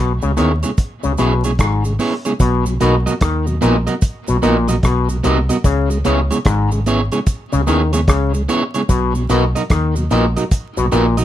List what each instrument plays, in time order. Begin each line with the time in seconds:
Already playing: fingered electric bass B1, clav B2
0.22 fingered electric bass C#2, clav C#3, tonewheel organ C#3 G#3, cabasa
0.37 fingered electric bass D#2, clav D#3, clean electric guitar B3 E4 G#4 C#5, tonewheel organ B3 C#4 E4, closed hi-hat, cabasa
0.63 tonewheel organ C#3 G#3, clean electric guitar B3 E4 G#4 C#5, closed hi-hat, cabasa
0.78 kick, closed hi-hat, cabasa
1.03 fingered electric bass C#2, clav C#3, tonewheel organ C#3 G#3, cabasa
1.18 fingered electric bass B1, clav B2, clean electric guitar B3 E4 G#4 C#5, tonewheel organ B3 C#4 E4, closed hi-hat, cabasa
1.44 tonewheel organ C#3 G#3, clean electric guitar B3 E4 G#4 C#5, closed hi-hat, cabasa
1.59 fingered electric bass G#1, clav G#2, kick, cross-stick, closed hi-hat, cabasa
1.85 tonewheel organ C#3 G#3, cabasa
1.99 tonewheel organ B3 C#4 E4, clean electric guitar B3 E4 G#4 C#5, open hi-hat, cabasa
2.25 tonewheel organ C#3 G#3, clean electric guitar B3 E4 G#4 C#5, closed hi-hat, cabasa
2.40 fingered electric bass B1, clav B2, kick, closed hi-hat, cabasa
2.66 tonewheel organ B2 F#3, cabasa
2.80 fingered electric bass B1, clav B2, tonewheel organ A#3 B3 D#4, clean electric guitar B3 F#4 A#4 D#5, closed hi-hat, cabasa
3.06 tonewheel organ B2 F#3, clean electric guitar B3 F#4 A#4 D#5, closed hi-hat, cabasa
3.21 fingered electric bass D#2, clav D#3, kick, cross-stick, closed hi-hat, cabasa
3.47 tonewheel organ B2 F#3, cabasa
3.61 fingered electric bass A#1, clav A#2, tonewheel organ A#3 B3 D#4, clean electric guitar B3 F#4 A#4 D#5, closed hi-hat, cabasa
3.87 tonewheel organ B2 F#3, clean electric guitar B3 F#4 A#4 D#5, closed hi-hat, cabasa
4.02 kick, closed hi-hat, cabasa
4.28 fingered electric bass B1, tonewheel organ B2 F#3, clav B2, cabasa
4.42 fingered electric bass A#1, clav A#2, tonewheel organ A#3 B3 D#4, clean electric guitar B3 F#4 A#4 D#5, closed hi-hat, cabasa
4.68 tonewheel organ B2 F#3, clean electric guitar B3 F#4 A#4 D#5, closed hi-hat, cabasa
4.83 fingered electric bass B1, clav B2, kick, cross-stick, closed hi-hat, cabasa
5.09 tonewheel organ B2 F#3, cabasa
5.23 fingered electric bass C2, clav C3, tonewheel organ A#3 B3 D#4, clean electric guitar B3 F#4 A#4 D#5, closed hi-hat, cabasa
5.49 tonewheel organ B2 F#3, clean electric guitar B3 F#4 A#4 D#5, closed hi-hat, cabasa
5.64 fingered electric bass C#2, clav C#3, kick, closed hi-hat, cabasa
5.90 tonewheel organ C#3 G#3, cabasa
6.05 fingered electric bass C#2, clav C#3, tonewheel organ B3 C#4 E4, clean electric guitar B3 E4 G#4 C#5, closed hi-hat, cabasa
6.31 tonewheel organ C#3 G#3, clean electric guitar B3 E4 G#4 C#5, closed hi-hat, cabasa
6.45 fingered electric bass G#1, clav G#2, kick, cross-stick, closed hi-hat, cabasa
6.71 tonewheel organ C#3 G#3, cabasa
6.86 tonewheel organ B3 C#4 E4, clean electric guitar B3 E4 G#4 C#5, closed hi-hat, cabasa
7.12 tonewheel organ C#3 G#3, clean electric guitar B3 E4 G#4 C#5, closed hi-hat, cabasa
7.27 kick, closed hi-hat, cabasa
7.53 fingered electric bass C#2, clav C#3, tonewheel organ C#3 G#3, cabasa
7.67 fingered electric bass D#2, clav D#3, clean electric guitar B3 E4 G#4 C#5, tonewheel organ B3 C#4 E4, closed hi-hat, cabasa
7.93 tonewheel organ C#3 G#3, clean electric guitar B3 E4 G#4 C#5, closed hi-hat, cabasa
8.08 fingered electric bass C#2, clav C#3, kick, cross-stick, closed hi-hat, cabasa
8.34 tonewheel organ C#3 G#3, cabasa
8.48 tonewheel organ B3 C#4 E4, clean electric guitar B3 E4 G#4 C#5, closed hi-hat, cabasa
8.74 tonewheel organ C#3 G#3, clean electric guitar B3 E4 G#4 C#5, closed hi-hat, cabasa
8.89 fingered electric bass B1, clav B2, kick, closed hi-hat, cabasa
9.15 tonewheel organ B2 F#3, cabasa
9.29 fingered electric bass B1, clav B2, tonewheel organ A#3 B3 D#4, clean electric guitar D#4 F#4 A#4 D#5, closed hi-hat, cabasa
9.55 tonewheel organ B2 F#3, clean electric guitar D#4 F#4 A#4 D#5, closed hi-hat, cabasa
9.70 fingered electric bass D#2, clav D#3, kick, cross-stick, closed hi-hat, cabasa
9.96 tonewheel organ B2 F#3, cabasa
10.11 fingered electric bass A#1, clav A#2, tonewheel organ A#3 B3 D#4, clean electric guitar D#4 F#4 A#4 D#5, closed hi-hat, cabasa
10.36 tonewheel organ B2 F#3, clean electric guitar D#4 F#4 A#4 D#5, closed hi-hat, cabasa
10.51 kick, closed hi-hat, cabasa
10.77 fingered electric bass B1, tonewheel organ B2 F#3, clav B2, cabasa
10.92 fingered electric bass A#1, clav A#2, tonewheel organ A#3 B3 D#4, clean electric guitar D#4 F#4 A#4 D#5, closed hi-hat, cabasa
11.17 tonewheel organ B2 F#3, clean electric guitar D#4 F#4 A#4 D#5, closed hi-hat, cabasa